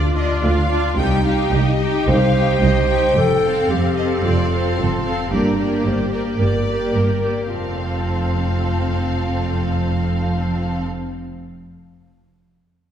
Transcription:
Already playing: cello section D2, double bass section D2, viola section D4 F4, clarinet F4, harp A4, violin section D5
0.15 viola section D4 F4, violin section D5 D#5
0.43 double bass section D2, cello section D2, clarinet F4, violin section F5
0.69 viola section D4 F4, violin section D5
0.97 double bass section C2, cello section C2, viola section D#4 G4, clarinet D#4, violin section G5
1.24 viola section D#4 G4, violin section F5 G5
1.51 double bass section C2, cello section C2, clarinet G4, violin section D#5
1.79 viola section D#4 G4, violin section G5
2.07 double bass section C2, cello section C2, clarinet C5, violin section F5
2.35 viola section D#4 G4, violin section G5
2.61 double bass section C2, cello section C2, violin section D#5
2.88 viola section D#4 G4, violin section G5
3.16 double bass section F1, cello section F2, clarinet A4
3.42 viola section C4 A4, violin section F5
3.69 double bass section F1, cello section F2, clarinet G4, violin section F5
3.96 viola section C4 A4, violin section D#5 F5
4.23 double bass section F1, cello section F2, clarinet F4, violin section D5
4.50 viola section C4 A4, violin section C5 F5
4.78 double bass section F1, cello section F2, clarinet F4, violin section A4
5.04 viola section C4 A4, violin section F5
5.31 double bass section G1, cello section G2, viola section A#3 G4, clarinet D4, violin section A#4 D5
5.57 viola section A#3 G4, violin section D5
5.84 double bass section G1, cello section G2, clarinet G4, violin section C5
6.11 viola section A#3 G4, violin section A#4 D5
6.39 double bass section G1, cello section G2, clarinet A#4, violin section D5
6.67 viola section A#3 G4, violin section D5
6.93 double bass section G1, cello section G2, violin section A#4
7.21 viola section A#3 G4, violin section D5
7.48 double bass section F1, cello section F2, viola section C4, clarinet F4, violin section A4 F5

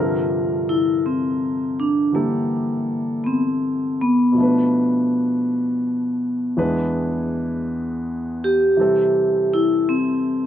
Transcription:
Already playing: grand piano G2 C3 D3 F3 A4, vibraphone F4
0.00 grand piano A#4
0.69 vibraphone E4
1.06 vibraphone C4
1.80 vibraphone D4
2.12 grand piano D3 E3 G3 G4 A4, vibraphone A#3
3.24 vibraphone B3 C4
4.01 vibraphone B3
4.32 grand piano B2 F3
4.37 grand piano A3 D4
4.42 grand piano B4
6.57 grand piano E2 E3 G#3 D4 B4
8.44 vibraphone G4
8.77 grand piano C3 E3 G3 C4
8.81 grand piano A4
9.54 vibraphone E4
9.89 vibraphone C4

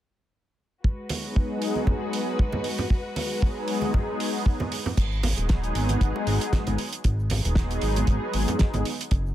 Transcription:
0.84 string section G#3 F#4 B4, kick
1.09 analog synth pad F#3 G#3 B3 D#4 G#4, open hi-hat, high conga
1.36 kick
1.62 open hi-hat
1.75 high conga
1.87 kick, low conga
2.13 open hi-hat
2.39 analog synth pad F#3 G#3 B3 D#4 G#4, kick
2.53 high conga, low conga
2.64 open hi-hat
2.79 low conga
2.90 kick
3.16 analog synth pad F#3 G#3 B3 D#4 G#4, open hi-hat, high conga
3.42 kick
3.68 open hi-hat
3.82 high conga
3.94 kick, low conga
4.20 open hi-hat
4.46 analog synth pad F#3 G#3 B3 D#4 G#4, kick
4.60 high conga, low conga
4.72 open hi-hat
4.86 low conga
4.97 analog synth bass G#1, kick, closed hi-hat, crash, shaker
5.12 shaker
5.23 analog synth pad F#3 G#3 B3 D#4 G#4, open hi-hat, high conga, low conga, shaker
5.37 analog synth bass D#1, closed hi-hat, high bongo, shaker
5.49 kick, snare, closed hi-hat, shaker
5.64 closed hi-hat
5.75 analog synth bass G#1, open hi-hat, shaker
5.89 closed hi-hat, high conga, shaker
6.01 analog synth bass G#1, kick, closed hi-hat, shaker
6.16 high bongo
6.27 analog synth bass G#1, open hi-hat, shaker
6.41 closed hi-hat, shaker
6.53 analog synth pad F#3 G#3 B3 D#4 G#4, kick, snare, closed hi-hat, low conga, shaker
6.67 analog synth bass G#1, closed hi-hat, high conga
6.78 open hi-hat, shaker
6.93 closed hi-hat, shaker
7.04 analog synth bass G#1, kick, closed hi-hat, shaker
7.20 shaker
7.29 analog synth pad F#3 G#3 B3 D#4 G#4, open hi-hat, high conga, low conga, shaker
7.45 analog synth bass D#1, closed hi-hat, high bongo, shaker
7.55 kick, snare, closed hi-hat, shaker
7.71 closed hi-hat
7.81 analog synth bass G#1, open hi-hat, shaker
7.96 closed hi-hat, high conga, shaker
8.07 analog synth bass G#1, kick, closed hi-hat, shaker
8.34 analog synth bass G#1, open hi-hat, shaker
8.48 closed hi-hat, high bongo, low conga, shaker
8.59 analog synth pad F#3 G#3 B3 D#4 G#4, kick, snare, closed hi-hat, shaker
8.74 analog synth bass G#1, closed hi-hat, high conga
8.85 open hi-hat, shaker
9.00 closed hi-hat, shaker
9.11 analog synth bass F#1, kick, closed hi-hat, shaker
9.26 shaker

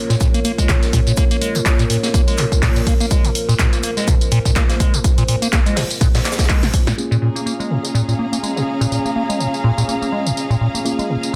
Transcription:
Already playing: analog synth pad A#3 F4 A#4 C#5
0.09 acid bass A#2, snare, closed hi-hat, tambourine
0.20 acid bass A#2, kick, closed hi-hat, tambourine, shaker
0.34 acid bass A#3, closed hi-hat, tambourine
0.45 acid bass A#3, open hi-hat, shaker
0.58 acid bass G#3, kick, closed hi-hat, tambourine
0.69 acid bass A#2, kick, snare, clap, closed hi-hat, tambourine, shaker
0.83 snare, closed hi-hat, tambourine
0.93 acid bass A#2, kick, open hi-hat, shaker
1.07 acid bass A#2, closed hi-hat, tambourine
1.17 acid bass A#3, kick, closed hi-hat, tambourine, shaker
1.31 acid bass A#3, closed hi-hat, tambourine
1.41 acid bass G#3, open hi-hat, shaker
1.55 acid bass A#2, closed hi-hat, tambourine
1.66 kick, snare, clap, closed hi-hat, tambourine, shaker
1.79 acid bass A#2, closed hi-hat, tambourine
1.90 acid bass A#2, open hi-hat, shaker
2.03 acid bass A#3, snare, closed hi-hat, tambourine
2.14 acid bass A#3, kick, closed hi-hat, tambourine, shaker
2.28 acid bass G#3, open hi-hat, tambourine
2.38 acid bass A#2, clap, open hi-hat, shaker
2.52 kick, closed hi-hat, tambourine
2.62 acid bass A#2, kick, snare, clap, closed hi-hat, open hi-hat, tambourine
2.76 acid bass A#2, closed hi-hat, tambourine
2.87 acid bass A#3, kick, open hi-hat, shaker
3.00 acid bass A#3, closed hi-hat, tambourine
3.11 acid bass G#3, analog synth pad C5, kick, closed hi-hat, tambourine, shaker
3.24 acid bass A#2, closed hi-hat, tambourine
3.35 open hi-hat, shaker
3.49 acid bass A#2, tambourine
3.59 acid bass A#2, kick, snare, clap, closed hi-hat, tambourine, shaker
3.73 acid bass A#3, closed hi-hat, tambourine
3.83 acid bass A#3, open hi-hat, shaker
3.97 acid bass G#3, snare, closed hi-hat, tambourine
4.07 acid bass A#2, kick, closed hi-hat, tambourine, shaker
4.21 closed hi-hat, tambourine
4.32 acid bass A#2, open hi-hat, shaker
4.45 acid bass A#2, kick, closed hi-hat, tambourine
4.56 acid bass A#3, kick, snare, clap, closed hi-hat, tambourine, shaker
4.69 acid bass A#3, snare, closed hi-hat, tambourine
4.80 acid bass G#3, kick, open hi-hat, shaker
4.94 acid bass A#2, closed hi-hat, tambourine
5.04 kick, closed hi-hat, tambourine, shaker
5.18 acid bass A#2, closed hi-hat, tambourine
5.28 acid bass A#2, open hi-hat, shaker
5.42 acid bass A#3, closed hi-hat, tambourine
5.52 acid bass A#3, kick, snare, clap, closed hi-hat, tambourine, shaker
5.66 acid bass G#3, closed hi-hat, tambourine
5.76 acid bass A#2, snare, open hi-hat
5.91 closed hi-hat, tambourine
6.01 acid bass A#2, kick, closed hi-hat, tambourine, shaker
6.14 acid bass A#2, snare, open hi-hat, tambourine
6.25 acid bass A#3, snare, clap, open hi-hat, shaker
6.32 snare, shaker
6.38 acid bass A#3, kick, snare, closed hi-hat, tambourine, shaker
6.44 snare, shaker
6.49 acid bass G#3, kick, snare, clap, closed hi-hat, open hi-hat, tambourine
6.63 acid bass A#2, snare, closed hi-hat, tambourine
6.74 kick, open hi-hat, shaker
6.87 acid bass A#2, snare, closed hi-hat, tambourine
6.98 analog synth pad A#3 F4 G#4 C#5, tine electric piano A#3 C#4 F4 G#4, string section C#4, tambourine
7.11 acid bass A#2, string section G#4, tambourine
7.22 acid bass A#2, string section A#5
7.35 acid bass A#3, string section F5, tambourine
7.46 acid bass A#3, tambourine
7.60 acid bass G#3, tambourine
7.70 acid bass A#2
7.83 snare, tambourine
7.94 acid bass A#2, tambourine
8.08 acid bass A#2, tambourine
8.19 acid bass A#3
8.32 acid bass A#3, closed hi-hat, tambourine
8.43 acid bass G#3, tambourine
8.56 acid bass A#2, snare, tambourine
8.81 acid bass A#2, tambourine
8.91 acid bass A#2, tambourine
9.05 acid bass A#3, tambourine
9.16 acid bass A#3
9.29 acid bass G#3, closed hi-hat, tambourine
9.40 acid bass A#2, tambourine
9.54 tambourine
9.64 acid bass A#2
9.78 acid bass A#2, snare, tambourine
9.88 acid bass A#3, tambourine
10.02 acid bass A#3, tambourine
10.12 acid bass G#3
10.26 acid bass A#2, tambourine
10.37 open hi-hat, tambourine
10.50 acid bass A#2, tambourine
10.61 acid bass A#2, shaker
10.74 acid bass A#3, tambourine
10.85 acid bass A#3, tine electric piano A#3 C#4 F4 G#4, tambourine, shaker
10.99 acid bass G#3, tambourine
11.09 acid bass A#2, shaker
11.23 tambourine

